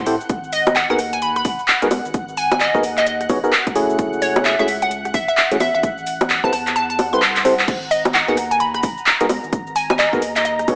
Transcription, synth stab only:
0.06 0.15 C4 medium
0.06 0.15 E4 medium
0.06 0.15 G4 medium
0.06 0.15 A4 medium
0.06 0.15 C5 loud
0.90 0.99 B3 medium
0.90 0.99 D#4 medium
0.90 0.99 F#4 medium
0.90 0.99 G#4 medium
0.90 0.99 A#4 medium
1.82 1.88 B3 medium
1.82 1.88 D#4 medium
1.82 1.88 F#4 medium
1.82 1.88 G#4 medium
1.82 1.88 A#4 loud
2.75 2.83 B3 medium
2.75 2.83 D#4 medium
2.75 2.83 F#4 medium
2.75 2.83 G#4 medium
2.75 2.83 A#4 loud
3.30 3.39 B3 medium
3.30 3.39 D#4 medium
3.30 3.39 F#4 medium
3.30 3.39 G#4 medium
3.30 3.39 C#5 loud
3.44 3.53 B3 loud
3.44 3.53 D#4 medium
3.44 3.53 F#4 medium
3.44 3.53 G#4 medium
3.44 3.53 A#4 loud
3.76 4.56 A3 loud
3.76 4.56 C#4 medium
3.76 4.56 E4 medium
3.76 4.56 F#4 medium
3.76 4.56 G#4 loud
4.59 4.68 A3 medium
4.59 4.68 C#4 medium
4.59 4.68 E4 medium
4.59 4.68 F#4 medium
4.59 4.68 G#4 medium
5.52 5.57 A3 medium
5.52 5.57 C#4 medium
5.52 5.57 E4 medium
5.52 5.57 F#4 medium
5.52 5.57 G#4 medium
6.44 6.53 C4 medium
6.44 6.53 E4 medium
6.44 6.53 G4 medium
6.44 6.53 A4 medium
6.44 6.53 B4 loud
7.13 7.22 C4 medium
7.13 7.22 E4 medium
7.13 7.22 G4 medium
7.13 7.22 A4 medium
7.13 7.22 B4 medium
7.45 7.54 C4 medium
7.45 7.54 E4 medium
7.45 7.54 G4 medium
7.45 7.54 A4 medium
7.45 7.54 C5 loud
8.28 8.37 B3 medium
8.28 8.37 D#4 medium
8.28 8.37 F#4 medium
8.28 8.37 G#4 medium
8.28 8.37 A#4 medium
9.21 9.26 B3 medium
9.21 9.26 D#4 medium
9.21 9.26 F#4 medium
9.21 9.26 G#4 medium
9.21 9.26 A#4 medium
10.13 10.22 B3 medium
10.13 10.22 D#4 medium
10.13 10.22 F#4 medium
10.13 10.22 G#4 medium
10.13 10.22 A#4 loud
10.68 10.75 B3 medium
10.68 10.75 D#4 medium
10.68 10.75 F#4 medium
10.68 10.75 G#4 medium
10.68 10.75 C#5 loud

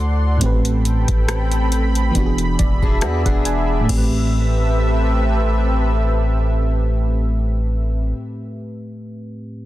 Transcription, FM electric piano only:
0.00 0.35 D3 medium
0.00 0.37 A3 medium
0.00 0.38 E4 medium
0.00 0.39 F#4 medium
0.00 0.40 C5 medium
0.37 2.10 A2 medium
0.37 2.11 A3 medium
0.42 2.12 C4 medium
0.42 2.13 G4 medium
0.46 2.14 B4 medium
2.11 3.84 E3 medium
2.11 3.85 B3 medium
2.15 3.86 D4 medium
2.15 3.87 F#4 medium
2.20 2.25 G4 medium
2.26 3.91 G#4 medium
2.59 2.99 D5 medium
3.02 3.24 E5 medium
3.26 3.44 F#5 medium
3.46 3.86 G#5 medium
3.81 8.62 A2 medium
3.85 8.66 A3 medium
3.89 8.71 C4 medium
3.93 8.75 G4 medium
3.98 8.79 B4 medium

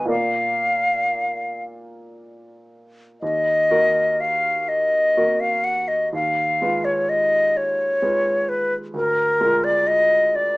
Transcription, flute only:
0.10 1.63 F5 medium
3.21 4.22 D#5 medium
4.20 4.70 F5 medium
4.68 5.42 D#5 medium
5.40 5.65 F5 medium
5.64 5.89 F#5 medium
5.88 6.12 D#5 medium
6.14 6.86 F5 medium
6.84 7.11 C#5 medium
7.09 7.58 D#5 medium
7.57 8.50 C#5 medium
8.49 8.74 B4 medium
8.94 9.65 A#4 medium
9.64 9.88 D5 medium
9.87 10.37 D#5 medium
10.35 10.57 D5 medium

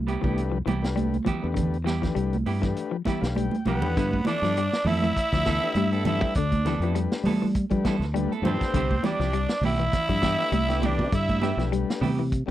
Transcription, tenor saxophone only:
3.67 4.23 B3 medium
4.27 4.88 D4 loud
4.87 6.06 E4 loud
6.06 6.34 E4 loud
6.36 6.91 D4 medium
8.45 9.06 C4 medium
9.04 9.64 D4 loud
9.65 10.87 E4 loud
10.85 11.14 D4 loud
11.14 11.69 E4 loud

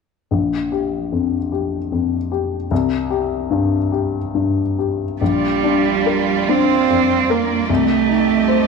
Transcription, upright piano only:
0.31 2.67 A#1 soft
0.72 1.36 G4 soft
1.12 1.76 F2 soft
1.52 2.16 G4 soft
1.92 2.55 F2 soft
2.32 2.71 G4 soft
2.71 5.17 C2 soft
3.10 3.76 G4 soft
3.50 4.18 G2 soft
3.92 4.61 G4 soft
4.35 5.04 G2 soft
4.79 5.21 G4 soft
5.21 7.66 A#1 soft
5.63 6.32 D4 soft
6.06 6.74 A#4 soft
6.49 7.14 D4 soft
6.90 7.54 F2 soft
7.30 7.69 A#4 soft
7.69 8.67 C2 soft
8.09 8.67 D#4 soft
8.48 8.67 C5 soft

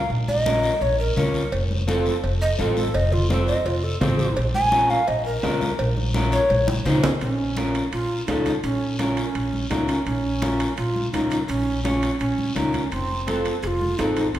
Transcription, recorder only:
0.28 0.83 D#5 medium
0.82 0.99 C#5 medium
0.99 1.17 A#4 medium
1.18 1.52 A#4 loud
2.42 2.58 D#5 loud
2.59 2.76 F4 medium
2.77 2.96 A4 loud
2.95 3.14 D#5 loud
3.13 3.30 F4 loud
3.30 3.47 A4 medium
3.48 3.67 D#5 loud
3.66 3.85 F4 medium
3.84 4.01 A4 medium
4.02 4.36 A4 loud
4.55 4.92 G#5 loud
4.90 5.09 F5 medium
5.08 5.25 D#5 medium
5.26 5.95 A#4 loud
6.32 6.67 C#5 loud
6.85 7.02 D#4 loud
7.04 7.10 C#4 loud
7.21 7.89 C#4 medium
7.92 8.25 F4 loud
8.27 8.44 D#4 medium
8.46 8.52 D#4 medium
8.63 8.97 C#4 medium
8.99 9.67 C#4 medium
9.70 9.87 D#4 medium
9.88 10.05 C#4 medium
10.06 10.74 C#4 loud
10.77 11.11 F4 loud
11.13 11.30 D#4 medium
11.30 11.36 D#4 medium
11.48 11.82 C#4 medium
11.84 12.18 C#4 medium
12.19 12.53 C#4 medium
12.56 12.74 D#4 medium
12.73 12.91 C#4 medium
12.91 13.41 C4 medium
13.62 13.68 G#4 medium
13.67 13.96 F4 loud
13.98 14.15 D#4 medium
14.16 14.33 D#4 medium
14.34 14.39 C4 medium

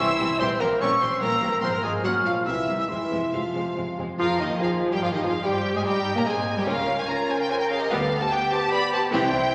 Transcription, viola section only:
0.20 0.29 E3 medium
0.20 0.28 G3 medium
0.41 0.49 E3 loud
0.41 0.49 G3 medium
0.61 0.69 E3 medium
0.61 0.69 G3 medium
0.81 0.89 E3 medium
0.81 0.90 G3 medium
1.01 1.10 E3 medium
1.01 1.09 G3 medium
1.21 1.29 E3 medium
1.21 1.30 G3 medium
1.42 1.50 E3 medium
1.42 1.50 G3 medium
1.62 1.70 F3 medium
1.62 1.70 G#3 medium
1.84 1.92 F3 medium
1.84 1.92 G#3 medium
2.04 2.12 F#3 medium
2.25 2.33 F#3 medium
2.46 2.54 C3 medium
2.46 2.54 G3 medium
2.68 2.76 C3 medium
2.68 2.76 G3 medium
2.90 2.98 C3 medium
2.90 2.98 G#3 medium
3.12 3.20 C3 medium
3.12 3.20 G#3 medium
3.33 3.41 C3 medium
3.33 3.41 G#3 medium
3.55 3.63 C3 medium
3.55 3.63 G#3 medium
3.76 3.84 C3 medium
3.76 3.84 G#3 medium
3.97 4.05 C3 medium
3.97 4.06 G#3 medium
4.19 4.39 F3 medium
4.41 4.61 D#3 medium
4.61 4.92 F3 medium
4.92 5.02 G3 medium
5.02 5.12 F3 loud
5.13 5.17 D#3 medium
5.23 5.31 F3 medium
5.44 5.74 G3 medium
5.75 5.79 G#3 medium
5.85 6.15 G3 medium
6.15 6.26 A#3 medium
6.26 6.34 G#3 medium
6.57 6.61 G3 loud
6.67 6.86 A#3 medium
6.67 6.86 C#4 medium
7.90 8.09 G3 medium
7.90 8.09 B3 medium
9.12 9.32 E3 loud
9.12 9.32 C4 loud

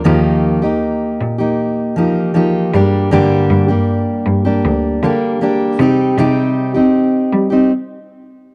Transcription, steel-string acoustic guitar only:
0.04 0.62 D#3 medium
0.04 0.62 F3 medium
0.04 0.63 A#3 medium
0.04 0.62 D#4 medium
0.04 0.61 G4 medium
0.62 1.40 A#3 soft
0.62 1.39 D#4 soft
0.62 1.38 G4 soft
1.38 1.96 A#3 soft
1.38 1.97 D#4 soft
1.38 1.96 G4 soft
1.96 2.33 F3 medium
1.96 2.33 A#3 medium
1.96 2.35 D#4 medium
1.96 2.35 G4 medium
2.34 2.73 F3 medium
2.34 2.73 A#3 medium
2.34 2.74 D#4 medium
2.34 2.74 G4 medium
2.74 3.11 G3 medium
2.74 3.11 A#3 medium
2.74 3.11 D4 medium
2.74 3.12 G4 medium
3.11 3.69 G2 medium
3.11 3.69 D3 medium
3.11 3.70 G3 medium
3.11 3.69 A#3 medium
3.11 3.68 D4 medium
3.11 3.67 G4 medium
3.68 4.47 G3 soft
3.68 4.46 A#3 soft
3.68 4.45 D4 soft
3.68 4.44 G4 soft
4.45 5.02 G3 soft
4.45 5.03 A#3 soft
4.45 5.03 D4 soft
4.45 5.03 G4 soft
5.03 5.40 G3 medium
5.03 5.40 A#3 medium
5.03 5.41 D4 medium
5.03 5.42 G4 medium
5.41 5.78 G3 medium
5.41 5.80 A#3 medium
5.41 5.81 D4 medium
5.41 5.81 G4 medium
5.79 6.17 G3 medium
5.79 6.18 C4 medium
5.79 6.18 D#4 medium
5.79 6.19 G4 medium
6.18 6.76 C3 medium
6.18 6.76 G3 medium
6.18 6.76 C4 medium
6.18 6.74 D#4 medium
6.18 6.73 G4 medium
6.74 7.51 C4 soft
6.74 7.51 D#4 soft
6.74 7.50 G4 soft
7.50 7.72 C4 soft
7.50 7.71 D#4 soft
7.50 7.70 G4 soft

